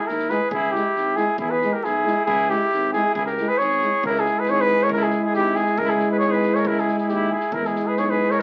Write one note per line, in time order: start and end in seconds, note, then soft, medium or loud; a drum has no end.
0.00 0.10 E4 medium
0.07 0.32 D#2 medium
0.07 0.33 E4 medium
0.07 0.31 A#4 medium
0.07 snare soft
0.19 snare soft
0.28 0.39 G#3 medium
0.28 0.37 E4 medium
0.28 0.53 G#4 medium
0.28 0.51 B4 medium
0.28 snare soft
0.51 0.76 C#2 medium
0.51 0.76 E4 medium
0.51 0.73 G#4 medium
0.51 kick medium
0.70 0.79 E4 medium
0.70 1.18 G4 loud
0.75 0.84 G#3 medium
0.75 1.19 E4 medium
0.75 snare soft
0.95 1.19 G#1 medium
0.95 snare soft
1.14 1.26 G#3 medium
1.14 1.24 E4 medium
1.14 1.39 G#4 medium
1.14 snare soft
1.19 1.39 E4 medium
1.38 1.64 E2 loud
1.38 1.54 E4 medium
1.38 1.51 G#4 medium
1.38 kick medium
1.50 1.74 G#4 medium
1.50 1.75 B4 medium
1.59 1.68 E4 medium
1.59 snare soft
1.64 1.72 G#3 medium
1.72 1.86 G4 medium
1.72 1.85 A#4 medium
1.84 2.08 B1 medium
1.84 2.27 E4 medium
1.84 2.25 G#4 medium
1.84 snare soft
2.05 2.14 G#3 medium
2.05 2.14 E4 medium
2.05 snare soft
2.26 2.52 C#2 loud
2.26 2.49 E4 medium
2.26 2.51 G#4 loud
2.26 kick medium
2.48 2.60 G#3 medium
2.48 2.57 E4 medium
2.48 2.93 E4 medium
2.48 2.92 G4 loud
2.48 snare soft
2.72 2.96 G#1 medium
2.72 snare soft
2.93 3.03 G#3 medium
2.93 3.14 E4 medium
2.93 3.03 E4 medium
2.93 3.13 G#4 loud
2.93 snare soft
3.14 3.40 C#2 medium
3.14 3.26 E4 medium
3.14 3.25 G#4 medium
3.14 kick medium
3.26 3.50 G4 medium
3.26 3.50 A#4 medium
3.26 snare soft
3.37 3.48 G#3 medium
3.37 3.47 E4 medium
3.37 snare soft
3.48 3.59 G#4 medium
3.48 3.59 B4 medium
3.58 3.84 G#1 medium
3.58 4.03 G#4 medium
3.58 4.02 C#5 medium
3.58 snare soft
3.70 snare soft
3.81 3.91 G#3 medium
3.81 3.90 E4 medium
3.81 snare soft
4.03 4.27 C#2 loud
4.03 5.75 G#3 medium
4.03 5.75 E4 medium
4.03 4.18 E4 medium
4.03 4.21 A#4 loud
4.03 kick medium
4.15 4.42 E4 medium
4.15 snare soft
4.20 4.41 G#4 medium
4.25 snare soft
4.39 4.52 G#4 medium
4.39 4.51 B4 medium
4.45 4.72 G#1 loud
4.45 snare soft
4.50 4.64 G#4 loud
4.50 4.63 C#5 loud
4.61 4.86 G#4 medium
4.61 4.84 B4 loud
4.66 snare soft
4.78 snare soft
4.83 4.93 A#4 medium
4.83 4.92 C#5 medium
4.89 5.15 C#2 loud
4.89 5.04 A#4 medium
4.89 kick medium
4.97 5.07 E4 medium
4.97 snare soft
5.03 5.26 E4 medium
5.03 5.24 G#4 medium
5.10 snare soft
5.24 5.36 E4 medium
5.24 5.34 G#4 medium
5.33 5.60 G#1 loud
5.33 5.57 G4 loud
5.33 snare soft
5.39 5.61 E4 medium
5.55 5.80 G#4 medium
5.55 snare soft
5.61 5.83 E4 medium
5.66 snare soft
5.78 6.03 C#2 loud
5.78 7.33 G#3 medium
5.78 7.32 E4 medium
5.78 5.91 A#4 loud
5.78 kick medium
5.83 5.93 E4 loud
5.89 6.11 G#4 medium
5.89 snare soft
5.93 6.13 E4 medium
5.99 snare soft
6.11 6.18 B4 medium
6.16 6.24 G#4 medium
6.16 6.33 C#5 medium
6.16 snare soft
6.23 6.47 G#1 medium
6.27 6.37 G#4 medium
6.32 6.56 B4 medium
6.37 6.58 G#4 medium
6.42 snare soft
6.54 6.69 A#4 medium
6.54 6.69 C#5 medium
6.54 snare soft
6.65 6.90 C#2 medium
6.65 6.79 E4 medium
6.65 6.81 A#4 loud
6.65 kick medium
6.77 7.00 E4 medium
6.77 6.98 G#4 medium
6.77 snare soft
6.88 snare soft
6.98 7.13 E4 medium
6.98 7.11 G#4 medium
6.98 snare soft
7.08 7.34 D#2 medium
7.08 7.33 G4 medium
7.08 snare soft
7.13 7.33 E4 medium
7.31 7.54 E4 medium
7.31 7.55 G#4 medium
7.40 snare soft
7.52 7.77 E2 medium
7.52 8.42 G#3 medium
7.52 8.42 E4 medium
7.52 7.64 E4 medium
7.52 7.68 A#4 medium
7.52 kick medium
7.64 7.87 E4 medium
7.64 7.89 G#4 medium
7.64 snare soft
7.75 snare soft
7.85 7.96 G#4 medium
7.85 8.00 B4 medium
7.96 8.21 B1 medium
7.96 8.08 G#4 medium
7.96 8.12 C#5 medium
7.96 snare soft
8.08 8.33 G#4 medium
8.08 8.32 B4 medium
8.30 8.42 A#4 medium
8.30 8.41 C#5 medium
8.30 snare soft